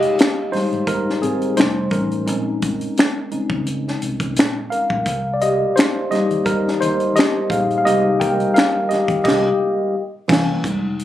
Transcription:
Already playing: tine electric piano G#3 D#4 G4 G#4 D#5 F5
0.02 closed hi-hat
0.19 finger snap, snare, closed hi-hat
0.51 tine electric piano G3 G#3 D#4 C5, muted fingered electric bass stroke, snare, open hi-hat
0.72 fingered electric bass G#1, closed hi-hat
0.87 tine electric piano D#4 A#4, kick, closed hi-hat
1.10 snare
1.22 fingered electric bass G#1, tine electric piano C4 G#4, closed hi-hat
1.42 closed hi-hat
1.56 fingered electric bass F1, tine electric piano G3 A3 D#4 C5, snare, closed hi-hat
1.61 finger snap
1.91 fingered electric bass A1, tine electric piano C#4 A#4, kick, closed hi-hat
2.11 closed hi-hat
2.26 fingered electric bass A#1, tine electric piano G#3 C4 C#4 D#4, closed hi-hat
2.62 kick, closed hi-hat
2.81 closed hi-hat
2.97 finger snap, snare, closed hi-hat
3.31 tine electric piano G#3 C4 C#4 D#4, muted fingered electric bass stroke, closed hi-hat
3.50 fingered electric bass C#2, kick
3.67 closed hi-hat
3.88 snare
4.02 fingered electric bass C2, closed hi-hat
4.20 kick, closed hi-hat
4.36 fingered electric bass A#1, finger snap, snare, closed hi-hat
4.70 tine electric piano A#4 F5, closed hi-hat
4.90 fingered electric bass A#1, kick
5.06 fingered electric bass C2, kick, closed hi-hat
5.34 tine electric piano D5
5.41 tine electric piano G4 D#5, closed hi-hat
5.76 tine electric piano D#4 C5, snare, closed hi-hat
5.80 finger snap
6.11 tine electric piano G3 A#3 D#4 G4 D#5, muted fingered electric bass stroke, snare, closed hi-hat
6.31 fingered electric bass D#2, closed hi-hat
6.46 tine electric piano D#4 A#4, kick, closed hi-hat
6.68 snare
6.81 fingered electric bass D#2, tine electric piano D#4 C5, closed hi-hat
7.00 closed hi-hat
7.16 tine electric piano G4 D#5, snare, closed hi-hat
7.20 finger snap
7.50 fingered electric bass A#1, tine electric piano G3 A#3 D#4 G#4 F5, kick, closed hi-hat
7.70 closed hi-hat
7.78 tine electric piano F5
7.85 fingered electric bass C2, tine electric piano G3 A#3 D#4 G4 D#5, closed hi-hat
8.20 tine electric piano A#4 G5, kick, closed hi-hat
8.40 closed hi-hat
8.54 tine electric piano A#4 F5, snare, closed hi-hat
8.59 finger snap
8.89 tine electric piano G4 D#5, muted fingered electric bass stroke, snare, closed hi-hat
9.08 fingered electric bass D#2, kick, closed hi-hat
9.24 fingered electric bass C2, tine electric piano G4 D#5, kick, snare, crash
10.28 fingered electric bass C2, tine electric piano E3 A#3 C#4, kick, crash
10.32 snare
10.64 fingered electric bass F1, tine electric piano G3 G#3 D#4, kick, closed hi-hat
10.99 closed hi-hat

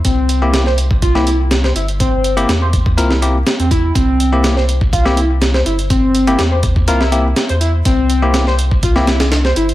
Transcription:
0.05 sub bass C2, analog synth lead C4, kick, closed hi-hat
0.29 closed hi-hat
0.42 tine electric piano A#3 C4 E4 G4
0.54 snare, closed hi-hat
0.66 analog synth lead C5, snare
0.78 closed hi-hat
0.91 kick
1.02 analog synth lead F4, kick, closed hi-hat
1.15 tine electric piano A#3 C4 E4 G4, analog synth lead E4, snare
1.27 analog synth lead E4, closed hi-hat
1.51 snare, closed hi-hat
1.64 analog synth lead C5, snare
1.75 sub bass G1, analog synth lead E4, closed hi-hat
1.88 closed hi-hat
2.00 analog synth lead C4, kick, closed hi-hat
2.24 closed hi-hat
2.37 tine electric piano A#3 C4 E4 G4, closed hi-hat
2.49 sub bass E2, snare, closed hi-hat
2.62 analog synth lead C5
2.73 kick, closed hi-hat
2.86 kick
2.97 sub bass C2, tine electric piano A#3 C4 E4 A#4, analog synth lead F4, closed hi-hat
3.11 analog synth lead E4, snare
3.22 tine electric piano A#3 C4 E4 G4, analog synth lead A#3, closed hi-hat
3.46 snare, closed hi-hat
3.59 sub bass E2, analog synth lead C4, closed hi-hat
3.71 analog synth lead E4, kick, closed hi-hat
3.83 analog synth lead E4
3.95 sub bass C2, analog synth lead C4, kick, closed hi-hat
4.20 closed hi-hat
4.32 tine electric piano A#3 C4 E4 G4
4.44 snare, closed hi-hat
4.56 analog synth lead C5, snare
4.69 closed hi-hat
4.81 kick
4.93 analog synth lead F4, kick, closed hi-hat
5.05 tine electric piano A#3 C4 E4 G4, analog synth lead E4, snare
5.17 analog synth lead E4, closed hi-hat
5.42 snare, closed hi-hat
5.54 analog synth lead C5, snare
5.66 sub bass G1, analog synth lead E4, closed hi-hat
5.79 closed hi-hat
5.90 analog synth lead C4, kick, closed hi-hat
6.15 closed hi-hat
6.27 tine electric piano A#3 C4 E4 G4, closed hi-hat
6.39 sub bass E2, snare, closed hi-hat
6.51 analog synth lead C5
6.63 kick, closed hi-hat
6.76 kick
6.88 sub bass C2, tine electric piano A#3 C4 E4 A#4, analog synth lead F4, closed hi-hat
7.01 analog synth lead E4, snare
7.12 tine electric piano A#3 C4 E4 G4, analog synth lead E4, closed hi-hat
7.36 snare, closed hi-hat
7.49 sub bass E2, analog synth lead C5, closed hi-hat
7.61 analog synth lead E4, closed hi-hat
7.85 sub bass C2, analog synth lead C4, kick, closed hi-hat
8.10 closed hi-hat
8.23 tine electric piano A#3 C4 E4 G4
8.34 snare, closed hi-hat
8.47 analog synth lead C5, snare
8.59 closed hi-hat
8.71 kick
8.83 analog synth lead F4, kick, closed hi-hat
8.96 tine electric piano A#3 C4 E4 G4, analog synth lead E4, snare
9.07 analog synth lead E4, snare, closed hi-hat
9.20 snare, closed hi-hat
9.32 snare, closed hi-hat
9.45 analog synth lead C5, snare
9.56 sub bass G1, analog synth lead E4, closed hi-hat
9.69 closed hi-hat

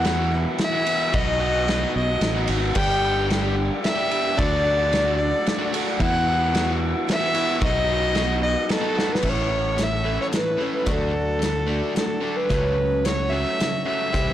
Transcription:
Already playing: fingered electric bass E2, fiddle F#5
0.04 overdriven electric guitar E2 B2 E3 B3 E4 F#4, snare, ride
0.19 overdriven electric guitar E3 B3 E4 F#4
0.31 twelve-string acoustic guitar B3 E4 F#4, muted overdriven electric guitar stroke
0.58 twelve-string acoustic guitar E3 B3 E4 F#4, fiddle E5, snare, ride
0.72 overdriven electric guitar E3 B3 E4 F#4
0.85 overdriven electric guitar E3 B3 E4 F#4, ride
1.12 fingered electric bass B1, overdriven electric guitar B2 F#3 B3 D#4 F#4, fiddle D#5, kick, ride
1.39 overdriven electric guitar F#3 B3 D#4 F#4
1.52 overdriven electric guitar B3 D#4 F#4
1.68 overdriven electric guitar B2 F#3 B3 D#4 F#4, snare, ride
1.80 overdriven electric guitar B3 D#4 F#4
1.95 fingered electric bass B1, fiddle D#5, muted overdriven electric guitar stroke
2.21 fingered electric bass A1, twelve-string acoustic guitar F#3 B3 D#4 F#4, snare, ride
2.35 overdriven electric guitar B3 D#4 F#4
2.48 fingered electric bass G#1, overdriven electric guitar F#3 B3 D#4 F#4, ride
2.75 fingered electric bass G1, overdriven electric guitar G2 D3 G3 B3 D4 G4, fiddle G5, kick, crash
3.03 overdriven electric guitar G3 B3 D4 G4
3.16 overdriven electric guitar G3 B3 D4 G4
3.30 overdriven electric guitar G2 D3 G3 B3 D4 G4, snare, ride
3.42 overdriven electric guitar G3 B3 D4 G4
3.56 muted overdriven electric guitar stroke
3.83 twelve-string acoustic guitar G3 B3 D4 G4, fiddle E5, snare, ride
3.95 overdriven electric guitar G3 B3 D4 G4
4.09 overdriven electric guitar G3 B3 D4 G4, ride
4.36 fingered electric bass D2, overdriven electric guitar D3 F#3 A3 D4 F#4, fiddle D5, kick, ride
4.64 overdriven electric guitar F#3 A3 D4 F#4
4.77 overdriven electric guitar A3 D4 F#4
4.91 overdriven electric guitar D3 F#3 A3 D4 F#4, snare, ride
5.05 overdriven electric guitar A3 D4 F#4
5.17 fiddle D5, muted overdriven electric guitar stroke
5.46 twelve-string acoustic guitar F#3 A3 D4 F#4, snare, ride
5.59 overdriven electric guitar A3 D4 F#4
5.72 overdriven electric guitar F#3 A3 D4 F#4, ride
5.99 overdriven electric guitar E2 B2 E3 B3 E4 F#4, fingered electric bass E2, fiddle F#5, kick, ride
6.26 overdriven electric guitar E3 B3 E4 F#4
6.40 overdriven electric guitar E3 B3 E4 F#4
6.52 overdriven electric guitar E2 B2 E3 B3 E4 F#4, snare, ride
6.65 overdriven electric guitar E3 B3 E4 F#4
6.80 muted overdriven electric guitar stroke
7.07 twelve-string acoustic guitar E3 B3 E4 F#4, snare, ride
7.12 fiddle E5
7.20 overdriven electric guitar E3 B3 E4 F#4
7.33 overdriven electric guitar E3 B3 E4 F#4, ride
7.60 fingered electric bass B1, overdriven electric guitar B2 F#3 B3 D#4 F#4, kick, ride
7.66 fiddle D#5
7.86 overdriven electric guitar F#3 B3 D#4 F#4
8.00 overdriven electric guitar B3 D#4 F#4
8.13 overdriven electric guitar B2 F#3 B3 D#4 F#4, snare, ride
8.27 overdriven electric guitar B3 D#4 F#4
8.42 fiddle D#5, muted overdriven electric guitar stroke
8.69 twelve-string acoustic guitar F#3 B3 D#4 F#4, fiddle A4, snare, ride
8.81 overdriven electric guitar B3 D#4 F#4
8.95 overdriven electric guitar F#3 B3 D#4 F#4, snare
9.15 fiddle B4, snare
9.23 fingered electric bass A1, overdriven electric guitar A2 E3 A3, twelve-string acoustic guitar C#4 E4 A4, kick, crash
9.29 fiddle C#5
9.50 overdriven electric guitar A2 E3
9.77 overdriven electric guitar A2 E3, twelve-string acoustic guitar A3 C#4 E4 A4, snare, closed hi-hat
9.83 fiddle E5
10.04 overdriven electric guitar A2 E3 A3, twelve-string acoustic guitar C#4 E4 A4
10.22 fiddle C#5
10.32 overdriven electric guitar A2 E3, twelve-string acoustic guitar A3 C#4 E4 A4, fiddle B4, snare, closed hi-hat
10.57 overdriven electric guitar A2 E3 A3, twelve-string acoustic guitar A4
10.61 twelve-string acoustic guitar A3 C#4 E4
10.75 fiddle B4
10.85 fingered electric bass D2, overdriven electric guitar D3 A3 D4, twelve-string acoustic guitar F#3 F#4, kick, closed hi-hat
10.90 fiddle A4
11.13 overdriven electric guitar D3 A3
11.39 overdriven electric guitar D3 A3, twelve-string acoustic guitar F#3 D4 F#4, snare, closed hi-hat
11.67 overdriven electric guitar D3 A3 D4, twelve-string acoustic guitar F#4
11.95 overdriven electric guitar D3 A3, twelve-string acoustic guitar F#3 D4 F#4, fiddle A4, snare, closed hi-hat
12.22 overdriven electric guitar D3 A3 D4
12.36 fiddle B4
12.50 fingered electric bass C#2, overdriven electric guitar C#3 F#3 A3, twelve-string acoustic guitar C#4 F#4, kick, closed hi-hat
12.78 overdriven electric guitar C#3 F#3
13.05 overdriven electric guitar C#3 F#3, twelve-string acoustic guitar A3 C#4 F#4, fiddle C#5, snare, closed hi-hat
13.30 overdriven electric guitar C#3 F#3 A3, twelve-string acoustic guitar C#4 F#4, fiddle E5
13.58 overdriven electric guitar C#3 F#3, twelve-string acoustic guitar A3 C#4 F#4, snare, closed hi-hat
13.86 overdriven electric guitar C#3 F#3 A3, fiddle E5
14.13 fingered electric bass C2, overdriven electric guitar C3 E3 G3, twelve-string acoustic guitar C4 E4 G4, kick, closed hi-hat

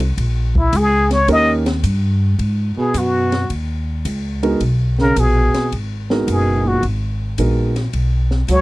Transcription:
Already playing: upright bass C2
0.17 upright bass A#1, kick, ride
0.55 muted trumpet E4, kick
0.73 upright bass C#2, muted trumpet G#4, kick, hi-hat pedal, ride
1.11 muted trumpet C#5, snare, ride
1.28 upright bass D#2, grand piano A#3 C#4 D#4 G4 A#4, muted trumpet D#5, kick, ride
1.66 snare, ride
1.83 upright bass G2, kick, hi-hat pedal, ride
2.39 upright bass G#2, kick, ride
2.77 baritone saxophone B2, muted trumpet G#4, muted upright bass stroke
2.94 upright bass F#2, baritone saxophone B2, muted trumpet F#4, kick, hi-hat pedal, ride
3.32 snare, ride
3.50 upright bass D#2, kick, ride
4.05 upright bass C#2, kick, hi-hat pedal, ride
4.43 grand piano G#3 B3 D#4 F#4 A#4, ride
4.60 upright bass B1, kick, ride
4.99 baritone saxophone C#3, muted trumpet A#4, snare
5.16 upright bass A#1, baritone saxophone B2, muted trumpet G#4, kick, hi-hat pedal, ride
5.54 snare, ride
5.72 upright bass G#1, kick, ride
6.10 grand piano G#3 B3 D#4 F#4 A#4, snare
6.27 upright bass F#1, baritone saxophone B2, kick, hi-hat pedal, ride
6.32 muted trumpet G#4
6.65 baritone saxophone A#2, muted trumpet F#4
6.82 upright bass G#1, kick, ride
7.38 upright bass A#1, grand piano G#3 B3 D#4 F#4 A#4, kick, hi-hat pedal, ride
7.76 snare, ride
7.93 upright bass B1, kick, ride
8.31 snare
8.48 upright bass C#2, baritone saxophone F#3, muted trumpet C#5, kick, hi-hat pedal, ride

